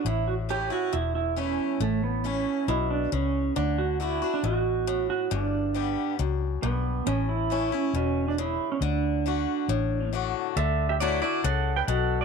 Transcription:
<<
  \new Staff \with { instrumentName = "Pedal steel guitar" } { \time 4/4 \key d \major \tempo 4 = 137 e'8 fis'8 g'8 fis'8 e'8 e'8 cis'4 | a8 b8 cis'4 e'8 d'8 cis'4 | d'8 fis'8 e'8. d'16 fis'4. fis'8 | d'2 r4 b4 |
cis'8 e'4 cis'8 cis'8. d'16 e'8. cis'16 | d'2. r4 | <a' e''>8. <g' e''>16 <fis' d''>8 <fis' d''>8 <a' fis''>8. <b' g''>16 <a' fis''>8. d''16 | }
  \new Staff \with { instrumentName = "Steel-string acoustic guitar" } { \time 4/4 \key d \major << { r4 <e a cis' e'>8 <cis' e'>8 r4 <e a cis' e'>4 | r4 <e a cis' e'>4 r2 | r4 <d a d' fis'>8 <d' fis'>8 r2 | r4 <d g b g'>4 r2 |
r4 <e a cis' e'>8 <cis' e'>8 r2 | r4 <d a d' fis'>4 r4 <d a d' fis'>4 | r4 <fis a d' e'>8 <d' e'>8 r2 | } \\ { a,2 e,2 | a,2 b,4 cis4 | d2 b,4 a,4 | g,2 fis,4 g,4 |
a,2 b,4 cis4 | d2 a,2 | d2 cis4 b,4 | } >> }
  \new Staff \with { instrumentName = "Fingered electric bass" } { \clef bass \time 4/4 \key d \major a,,2 e,,2 | a,,2 b,,4 cis,4 | d,2 a,,2 | g,,2 cis,4 b,,4 |
a,,2 e,,2 | d,2 a,,2 | d,2 cis,4 b,,4 | }
>>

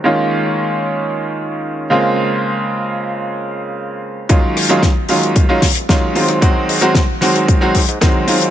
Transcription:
<<
  \new Staff \with { instrumentName = "Grand piano" } { \clef bass \time 4/4 \key ees \dorian \tempo 4 = 113 <ees aes bes des' f'>2.~ <ees aes bes des' f'>8 <des aes bes c' f'>8~ | <des aes bes c' f'>1 | <ees ges aes des' f'>8. <ees ges aes des' f'>16 r8 <ees ges aes des' f'>8. <ees ges aes des' f'>16 r8 <ees ges aes des' f'>8 <ees ges aes c' f'>8 | <ees ges aes c' ges'>8. <ees ges aes c' ges'>16 r8 <ees ges aes c' ges'>8. <ees ges aes c' ges'>16 r8 <ees ges aes c' ges'>8 <ees ges aes c' f'>8 | }
  \new Staff \with { instrumentName = "Analog synth bass" } { \clef bass \time 4/4 \key ees \dorian r1 | r1 | ees,16 r16 ees,,16 ees,,16 ees,16 r16 ees,,16 ees,,16 ees,16 r8 ees,,16 ees,8 aes,16 aes,16 | r8 aes,16 aes,16 r8 aes,16 aes,16 aes,,16 r16 aes,16 aes,16 aes,,8 aes,16 aes,16 | }
  \new DrumStaff \with { instrumentName = "Drums" } \drummode { \time 4/4 r4 r4 r4 r4 | r4 r4 r4 r4 | <hh bd>8 <hho ss>16 hh16 <hh bd sn>8 hho16 hh16 <hh bd>8 <hho bd sn>16 hh16 <hh bd sn>8 hho16 <hh ss>16 | <hh bd>8 hho16 hh16 <hh bd sn>8 <hho sn>16 hh16 <hh bd>8 <hho bd>16 hh16 <hh bd ss sn>8 hho16 hh16 | }
>>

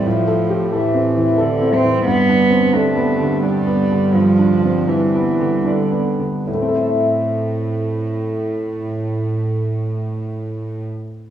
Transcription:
<<
  \new Staff \with { instrumentName = "Harp" } { \time 3/4 \key a \minor \tempo 4 = 78 \tuplet 3/2 { <a, c c' e' a'>4 c'8 e'8 a'8 e'8 a'8 e'8 c'8 } | \tuplet 3/2 { g,8 d8 d'8 g'8 d''8 g'8 d''8 g'8 d'8 } | \tuplet 3/2 { g,8 d8 d'8 g'8 d''8 g'8 d''8 g'8 d'8 } | <a, a c' e' a' e''>2.~ |
<a, a c' e' a' e''>2. | }
  \new Staff \with { instrumentName = "Grand piano" } { \time 3/4 \key a \minor \tuplet 3/2 { <a, e>8 a'8 g'8 a'8 c'8 e8 a'8 c'8 e8 } | \tuplet 3/2 { g,8 d'8 c'8 d'8 b8 d8 d'8 b8 d8 } | \tuplet 3/2 { g,8 d'8 c'8 d'8 b8 d8 d'8 b8 d8 } | <a, a c' a' c''>2.~ |
<a, a c' a' c''>2. | }
  \new Staff \with { instrumentName = "Cello" } { \clef bass \time 3/4 \key a \minor f4 e4 d8 c'8 | b4 a4 g4 | f4 e4 d8 r8 | a,2.~ |
a,2. | }
  \new Staff \with { instrumentName = "Cello section" } { \clef bass \time 3/4 \key a \minor a,2. | g,2.~ | g,2~ g,8 r8 | a,2.~ |
a,2. | }
>>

